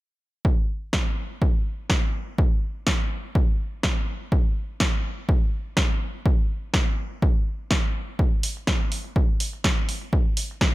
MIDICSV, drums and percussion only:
0, 0, Header, 1, 2, 480
1, 0, Start_track
1, 0, Tempo, 483871
1, 445, Time_signature, 4, 2, 24, 8
1, 10659, End_track
2, 0, Start_track
2, 0, Title_t, "Drums"
2, 445, Note_on_c, 9, 36, 101
2, 544, Note_off_c, 9, 36, 0
2, 922, Note_on_c, 9, 38, 108
2, 925, Note_on_c, 9, 36, 99
2, 1022, Note_off_c, 9, 38, 0
2, 1024, Note_off_c, 9, 36, 0
2, 1405, Note_on_c, 9, 36, 110
2, 1504, Note_off_c, 9, 36, 0
2, 1881, Note_on_c, 9, 38, 110
2, 1885, Note_on_c, 9, 36, 97
2, 1980, Note_off_c, 9, 38, 0
2, 1984, Note_off_c, 9, 36, 0
2, 2365, Note_on_c, 9, 36, 113
2, 2464, Note_off_c, 9, 36, 0
2, 2843, Note_on_c, 9, 38, 112
2, 2845, Note_on_c, 9, 36, 96
2, 2942, Note_off_c, 9, 38, 0
2, 2944, Note_off_c, 9, 36, 0
2, 3325, Note_on_c, 9, 36, 115
2, 3425, Note_off_c, 9, 36, 0
2, 3803, Note_on_c, 9, 38, 111
2, 3806, Note_on_c, 9, 36, 99
2, 3902, Note_off_c, 9, 38, 0
2, 3905, Note_off_c, 9, 36, 0
2, 4285, Note_on_c, 9, 36, 116
2, 4384, Note_off_c, 9, 36, 0
2, 4763, Note_on_c, 9, 38, 110
2, 4765, Note_on_c, 9, 36, 103
2, 4862, Note_off_c, 9, 38, 0
2, 4864, Note_off_c, 9, 36, 0
2, 5245, Note_on_c, 9, 36, 114
2, 5344, Note_off_c, 9, 36, 0
2, 5721, Note_on_c, 9, 38, 107
2, 5725, Note_on_c, 9, 36, 100
2, 5820, Note_off_c, 9, 38, 0
2, 5824, Note_off_c, 9, 36, 0
2, 6206, Note_on_c, 9, 36, 117
2, 6305, Note_off_c, 9, 36, 0
2, 6682, Note_on_c, 9, 38, 106
2, 6686, Note_on_c, 9, 36, 102
2, 6781, Note_off_c, 9, 38, 0
2, 6785, Note_off_c, 9, 36, 0
2, 7166, Note_on_c, 9, 36, 109
2, 7265, Note_off_c, 9, 36, 0
2, 7644, Note_on_c, 9, 38, 104
2, 7646, Note_on_c, 9, 36, 100
2, 7743, Note_off_c, 9, 38, 0
2, 7745, Note_off_c, 9, 36, 0
2, 8126, Note_on_c, 9, 36, 102
2, 8225, Note_off_c, 9, 36, 0
2, 8258, Note_on_c, 9, 82, 30
2, 8357, Note_off_c, 9, 82, 0
2, 8366, Note_on_c, 9, 46, 101
2, 8465, Note_off_c, 9, 46, 0
2, 8497, Note_on_c, 9, 82, 77
2, 8596, Note_off_c, 9, 82, 0
2, 8604, Note_on_c, 9, 38, 98
2, 8606, Note_on_c, 9, 36, 98
2, 8703, Note_off_c, 9, 38, 0
2, 8705, Note_off_c, 9, 36, 0
2, 8846, Note_on_c, 9, 46, 89
2, 8945, Note_off_c, 9, 46, 0
2, 8968, Note_on_c, 9, 82, 78
2, 9067, Note_off_c, 9, 82, 0
2, 9086, Note_on_c, 9, 36, 111
2, 9185, Note_off_c, 9, 36, 0
2, 9209, Note_on_c, 9, 82, 35
2, 9308, Note_off_c, 9, 82, 0
2, 9327, Note_on_c, 9, 46, 93
2, 9426, Note_off_c, 9, 46, 0
2, 9453, Note_on_c, 9, 82, 68
2, 9552, Note_off_c, 9, 82, 0
2, 9566, Note_on_c, 9, 36, 96
2, 9566, Note_on_c, 9, 38, 107
2, 9665, Note_off_c, 9, 38, 0
2, 9666, Note_off_c, 9, 36, 0
2, 9808, Note_on_c, 9, 46, 85
2, 9907, Note_off_c, 9, 46, 0
2, 9931, Note_on_c, 9, 82, 73
2, 10030, Note_off_c, 9, 82, 0
2, 10047, Note_on_c, 9, 36, 99
2, 10146, Note_off_c, 9, 36, 0
2, 10169, Note_on_c, 9, 82, 30
2, 10268, Note_off_c, 9, 82, 0
2, 10287, Note_on_c, 9, 46, 97
2, 10386, Note_off_c, 9, 46, 0
2, 10423, Note_on_c, 9, 82, 83
2, 10522, Note_off_c, 9, 82, 0
2, 10525, Note_on_c, 9, 38, 102
2, 10526, Note_on_c, 9, 36, 91
2, 10625, Note_off_c, 9, 36, 0
2, 10625, Note_off_c, 9, 38, 0
2, 10659, End_track
0, 0, End_of_file